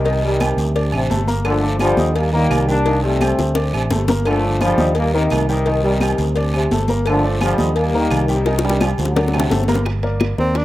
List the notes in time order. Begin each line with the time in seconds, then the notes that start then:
Already playing: C2 C3 D#3
0.05 D#3 D#4 D#5, cowbell, high conga, low agogo, long guiro
0.23 C3 D#3 G3, high conga, low agogo
0.40 G3 G4 G5, cowbell, high conga, low timbale, low agogo, short guiro, claves
0.57 D2, cowbell, high conga, short guiro
0.76 D4 D5 D6, cowbell, high conga, low agogo, long guiro
0.92 A1 C3, high conga, low agogo, claves
1.10 G1 A3 A4 A5, cowbell, high conga, low timbale, short guiro
1.27 A#3 A#4 A#5, cowbell, high conga, short guiro
1.44 D3 F3 A3, cowbell, high conga, low agogo, long guiro, claves
1.62 D4 D5 D6, high conga
1.79 D3 F3 G3, cowbell, high conga, low timbale, low agogo, short guiro, claves
1.97 D#2 D#4 D#5 D#6, high conga, short guiro
2.16 G3 A#3, cowbell, high conga, low agogo, long guiro
2.33 D#3 G3 A#3 A#4 A#5, high conga
2.50 C2, cowbell, high conga, low timbale, low agogo, short guiro, claves
2.68 G3 A#3 D4 G4 G5, high conga, short guiro
2.86 D#3 D#4 D#5, cowbell, high conga, low agogo, long guiro
3.03 G3 A3 C4, high conga, low agogo
3.21 G3 G4 G5, cowbell, high conga, low timbale, low agogo, short guiro, claves
3.39 D2, cowbell, high bongo, high conga, short guiro
3.55 D4 D5 D6, cowbell, low bongo, high conga, low agogo, long guiro
3.73 A1 C3, high conga, low agogo, claves
3.90 G1 A3 A4 A5, cowbell, low bongo, high conga, low timbale, short guiro
4.08 A#3 A#4 A#5, cowbell, low bongo, high conga, short guiro
4.25 D3 F3 A3, cowbell, low agogo, long guiro, claves
4.43 D4 D5 D6, high conga
4.61 D3 F3 G3, cowbell, high conga, low timbale, low agogo, short guiro, claves
4.78 D#2 D#4 D#5 D#6, high conga, short guiro
4.95 G3 A#3, cowbell, high conga, low agogo, long guiro
5.14 C3 D#3 A#3 A#4 A#5, high conga
5.30 C2, cowbell, high conga, low timbale, low agogo, short guiro, claves
5.49 C3 D#3 G3 G4 G5, high conga, short guiro
5.66 D#3 D#4 D#5, cowbell, high conga, low agogo, long guiro
5.83 C3 D#3 G3, high conga, low agogo
6.01 G3 G4 G5, cowbell, high conga, low timbale, low agogo, short guiro, claves
6.18 D2, cowbell, high conga, short guiro
6.35 D4 D5 D6, cowbell, high conga, low agogo, long guiro
6.53 C3, high conga, low agogo, claves
6.71 G1 A3 A4 A5, cowbell, high conga, low timbale, short guiro
6.88 A#3 A#4 A#5, cowbell, high conga, short guiro
7.06 D3 F3 A3, cowbell, high conga, low agogo, long guiro, claves
7.24 D4 D5 D6, high conga
7.41 D3 F3 G3, cowbell, high conga, low timbale, low agogo, short guiro, claves
7.58 D#2 D#4 D#5 D#6, high conga, short guiro
7.75 G3 A#3, cowbell, high conga, low agogo, long guiro
7.93 D#3 A#3 A#4 A#5, high conga
8.11 C2, cowbell, high conga, low timbale, low agogo, short guiro, claves
8.28 C3 D#3 G3 G4 G5, high conga, short guiro
8.46 D#3 D#4 D#5, cowbell, high bongo, high conga, high timbale, low agogo, long guiro
8.59 high bongo
8.63 G3, high conga, high timbale, low agogo
8.69 high bongo
8.80 C3 F3 G3 G4 G5, cowbell, high bongo, high conga, low agogo, short guiro, claves
8.98 D2 D3 F#3, cowbell, high conga, low timbale, short guiro
9.05 low bongo
9.15 D4 D5 D6, cowbell, low bongo, high conga, low agogo, long guiro
9.28 low bongo
9.34 C3, high conga, low timbale, low agogo, claves
9.40 low bongo
9.50 G1 A3 A4 A5, cowbell, low bongo, high conga, short guiro
9.64 low bongo
9.68 A#3 A#4 A#5, cowbell, high conga, low timbale, short guiro
9.75 low bongo
9.85 high bongo, high conga, high timbale, claves
10.03 A#3 A#4 D5, high conga, high timbale
10.20 high bongo, high conga, high timbale, low timbale, claves
10.38 D#2 A#3 C4 A#4 D5, high bongo, high conga
10.55 D4, high bongo, high conga, high timbale